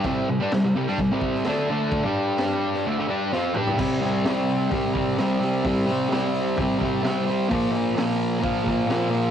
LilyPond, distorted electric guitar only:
\new Staff \with { instrumentName = "Distorted electric guitar" } { \clef bass \time 4/4 \key c \mixolydian \tempo 4 = 129 <c g c'>8 <c g>16 <g d'>16 <c g>16 <c g>16 <c g>16 <g d'>16 <c g>16 <c g c'>8. <d a d'>8 <d a d'>8~ | <d a d'>16 <g d' g'>4.~ <g d' g'>16 <d a>16 <d a>16 <g d' g'>8 <f c' f'>8 <g d' g'>8 | <c g c'>8 <g c'>8 <c g c'>4 <c g c'>8 <g c'>8 <c g c'>8 <g c'>8 | <c g c'>8 <g c'>8 <c g c'>4 <c g c'>8 <g c'>8 <c g c'>8 <g c'>8 |
<bes, f bes>8 <f bes>8 <bes, f bes>4 <bes, f bes>8 <f bes>8 <bes, f bes>8 <f bes>8 | }